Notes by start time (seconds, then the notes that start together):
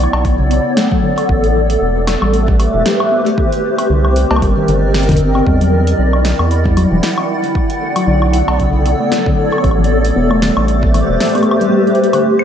Already playing: B3 A4 C#5 D5
0.04 high woodblock
0.13 B1, cowbell, high woodblock
0.25 kick, closed hi-hat
0.39 C#3
0.51 closed hi-hat
0.77 A3, snare, closed hi-hat
0.92 F#3, kick
1.03 D3
1.18 closed hi-hat, high woodblock
1.29 A1 A3, kick
1.44 closed hi-hat
1.55 E3
1.65 G4
1.70 closed hi-hat
1.81 E1
1.96 B3
2.07 A3, snare, closed hi-hat, high woodblock
2.22 A1 G3 C5, high woodblock
2.33 closed hi-hat
2.48 kick
2.60 closed hi-hat, high woodblock
2.74 E1 E3
2.86 snare, closed hi-hat
3.00 high woodblock
3.12 B3
3.26 A3, closed hi-hat
3.38 D#3 C4, kick
3.52 A#4, closed hi-hat
3.78 closed hi-hat, high woodblock
3.90 C2 D3 D5
4.05 high woodblock
4.16 closed hi-hat
4.31 C2 A#3, cowbell
4.36 high woodblock
4.42 G1 G3, kick, closed hi-hat
4.57 D#3
4.68 G1 D3, closed hi-hat
4.94 snare, closed hi-hat
4.99 closed hi-hat
5.03 closed hi-hat
5.09 D3, kick, closed hi-hat
5.11 kick, closed hi-hat
5.14 kick
5.16 kick, closed hi-hat
5.18 kick
5.35 C4, high woodblock
5.47 E2 G3 E4, kick
5.61 F#3, closed hi-hat
5.73 E3
5.87 closed hi-hat
5.99 B1
6.10 F#5, high woodblock
6.25 D3, snare, closed hi-hat
6.39 E2, high woodblock
6.51 closed hi-hat
6.65 G3, kick
6.77 F#3, closed hi-hat, high woodblock
6.92 E1 E3
7.03 snare, closed hi-hat
7.18 high woodblock
7.44 D3, closed hi-hat
7.55 B3, kick
7.70 closed hi-hat
7.75 A4
7.81 A3
7.96 F#3, closed hi-hat, high woodblock
8.07 B1 D3
8.22 high woodblock
8.33 closed hi-hat
8.48 B1, cowbell, high woodblock
8.60 C#3, kick, closed hi-hat
8.86 closed hi-hat
9.00 A3
9.12 F#3, snare, closed hi-hat
9.26 D3, kick
9.52 high woodblock
9.58 high woodblock
9.64 A1 A3, kick, closed hi-hat, high woodblock
9.71 high woodblock
9.79 E3
9.84 G4, closed hi-hat
10.04 C5, closed hi-hat
10.16 E1 B3
10.31 A3, high woodblock
10.42 G3, snare, closed hi-hat
10.57 A1, high woodblock
10.68 closed hi-hat
10.83 kick
10.94 E3, closed hi-hat, high woodblock
11.09 E1
11.20 snare, closed hi-hat
11.25 closed hi-hat
11.29 closed hi-hat
11.35 B3, closed hi-hat, high woodblock
11.38 closed hi-hat
11.43 A3, closed hi-hat, high woodblock
11.51 high woodblock
11.61 G3, closed hi-hat
11.73 C4
11.87 closed hi-hat
11.95 closed hi-hat
12.04 closed hi-hat
12.13 D3, closed hi-hat, high woodblock
12.39 high woodblock